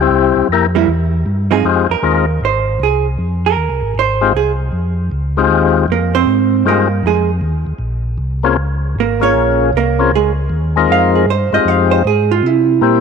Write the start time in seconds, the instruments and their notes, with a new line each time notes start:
0.01 tonewheel organ G3 C4 E4 G4
0.10 tonewheel organ C2
0.36 tonewheel organ C2
0.49 tonewheel organ F2 A#4
0.53 tonewheel organ A#3 E4 G4
0.75 hollow-body jazz guitar G3 A#3 E4
0.87 tonewheel organ E2
1.26 tonewheel organ G2
1.51 hollow-body jazz guitar F3 C4 D#4 G#4
1.65 tonewheel organ F2 G#3 C4 D#4 F4 G4
1.89 tonewheel organ F2, hollow-body jazz guitar A#4
2.02 tonewheel organ D#2 G#3 C4 D#4 F4 A#4
2.41 tonewheel organ G#1, hollow-body jazz guitar C5
2.80 tonewheel organ C2, hollow-body jazz guitar G#4
3.19 tonewheel organ F2
3.46 hollow-body jazz guitar A#4
3.56 tonewheel organ D#2
3.70 tonewheel organ C2
3.82 tonewheel organ G#1
3.95 tonewheel organ G#1
3.99 hollow-body jazz guitar C5
4.21 tonewheel organ G#3 C4 D#4 F4 G4
4.34 tonewheel organ C2, hollow-body jazz guitar G#4
4.72 tonewheel organ F2
5.11 tonewheel organ C#2
5.37 tonewheel organ G#3 C4 D#4 F4 G4
5.49 tonewheel organ D#2
5.88 tonewheel organ F2, hollow-body jazz guitar A#3 A#4
6.15 hollow-body jazz guitar C4 C5
6.27 tonewheel organ G#2
6.65 tonewheel organ G2 G#3 C4 D#4 F4 G4, hollow-body jazz guitar A#3 A#4
7.03 tonewheel organ F2, hollow-body jazz guitar G#4
7.07 hollow-body jazz guitar G#3
7.41 tonewheel organ D#2
7.67 tonewheel organ D#2
7.78 tonewheel organ A#1
8.18 tonewheel organ C2
8.43 tonewheel organ A#3 C4 C#4 F4 G#4
8.57 tonewheel organ C#2
8.96 tonewheel organ G#1
9.00 hollow-body jazz guitar A#3 A#4
9.20 tonewheel organ A#3 C#4 F4 G#4, hollow-body jazz guitar C#4 C#5
9.34 tonewheel organ A#1
9.73 tonewheel organ C2, hollow-body jazz guitar A#4
9.78 hollow-body jazz guitar A#3
9.99 tonewheel organ A#3 C4 C#4 F4 G#4
10.11 tonewheel organ C#2
10.15 hollow-body jazz guitar G#3 G#4
10.49 tonewheel organ D#2
10.76 tonewheel organ G#3 C4 D#4 F4 A#4
10.89 tonewheel organ F2, hollow-body jazz guitar F5
11.15 hollow-body jazz guitar G#4
11.26 tonewheel organ G2
11.30 hollow-body jazz guitar C5
11.52 tonewheel organ G2 G#3 C4 D#4 F4 G4, hollow-body jazz guitar D#5
11.64 tonewheel organ F2, hollow-body jazz guitar F5
11.91 hollow-body jazz guitar C5
12.05 tonewheel organ G#2, hollow-body jazz guitar G#4
12.31 hollow-body jazz guitar F4
12.43 tonewheel organ C3, hollow-body jazz guitar E4
12.81 tonewheel organ A#2 G3 A#3 C4 E4 G4